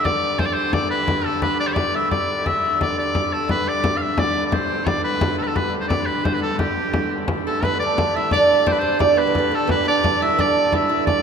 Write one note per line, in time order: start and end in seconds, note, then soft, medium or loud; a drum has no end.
0.00 3.50 G2 medium
0.00 3.51 D3 medium
0.04 0.41 D5 loud
0.04 frame drum medium
0.39 0.47 C5 medium
0.39 frame drum medium
0.46 0.55 D5 medium
0.54 0.75 C5 medium
0.54 frame drum soft
0.73 0.90 D5 medium
0.73 frame drum medium
0.90 1.26 B4 medium
1.08 frame drum medium
1.25 1.42 A4 medium
1.42 1.59 B4 medium
1.42 frame drum medium
1.59 1.68 D5 medium
1.59 frame drum soft
1.67 1.76 C5 medium
1.74 1.97 D5 medium
1.74 frame drum medium
1.95 2.10 E5 medium
2.11 2.47 D5 medium
2.11 frame drum medium
2.46 2.80 E5 medium
2.46 frame drum medium
2.81 2.97 D5 medium
2.81 frame drum medium
2.98 3.34 D5 medium
2.98 frame drum soft
3.15 frame drum medium
3.33 3.49 A4 medium
3.49 7.62 G2 medium
3.49 7.62 D3 medium
3.49 3.70 B4 medium
3.49 frame drum medium
3.67 3.98 D5 medium
3.67 frame drum soft
3.84 frame drum medium
3.97 4.03 F5 medium
4.01 4.20 E5 medium
4.18 4.45 D5 medium
4.18 frame drum medium
4.46 4.55 D5 medium
4.52 4.89 C5 medium
4.52 frame drum medium
4.70 frame drum soft
4.87 5.03 D5 medium
4.87 frame drum medium
5.04 5.36 B4 medium
5.21 frame drum medium
5.38 5.44 A4 medium
5.42 5.48 B4 medium
5.47 5.57 A4 medium
5.55 5.73 B4 medium
5.55 frame drum medium
5.73 frame drum soft
5.80 5.87 C5 medium
5.88 6.07 D5 medium
5.88 frame drum medium
6.06 6.26 B4 medium
6.24 6.35 C5 medium
6.24 frame drum medium
6.34 6.41 B4 medium
6.42 6.57 A4 medium
6.58 7.24 G4 medium
6.58 frame drum medium
6.77 frame drum soft
6.93 frame drum medium
7.28 frame drum medium
7.46 7.64 A3 medium
7.46 7.65 A4 medium
7.62 11.22 G2 medium
7.62 11.22 D3 medium
7.62 7.82 B3 medium
7.62 7.79 B4 medium
7.62 frame drum medium
7.79 8.16 D4 medium
7.79 8.17 D5 medium
7.79 frame drum soft
7.98 frame drum medium
8.15 8.33 E4 medium
8.15 8.32 E5 loud
8.31 8.66 D4 medium
8.31 8.69 D5 medium
8.31 frame drum medium
8.66 8.73 C4 medium
8.66 8.73 C5 medium
8.66 frame drum medium
8.72 8.80 B4 medium
8.79 8.99 C4 medium
8.79 8.99 C5 medium
8.84 frame drum soft
8.99 9.18 D4 medium
8.99 9.19 D5 medium
8.99 frame drum medium
9.16 9.26 B3 medium
9.16 9.56 B4 medium
9.27 9.37 B3 medium
9.35 9.50 B3 medium
9.35 frame drum medium
9.51 9.67 A3 medium
9.51 9.70 A4 medium
9.67 9.86 B3 medium
9.67 9.86 B4 medium
9.67 frame drum medium
9.85 10.02 D4 medium
9.85 10.23 D5 loud
9.85 frame drum soft
10.03 10.22 D4 medium
10.03 frame drum medium
10.22 10.39 E4 medium
10.22 10.41 E5 loud
10.39 10.73 D4 medium
10.39 10.76 D5 loud
10.39 frame drum medium
10.72 10.88 E4 medium
10.72 11.06 E5 medium
10.72 frame drum medium
10.89 11.22 E4 medium
10.89 frame drum soft
11.06 11.22 D5 medium
11.06 frame drum medium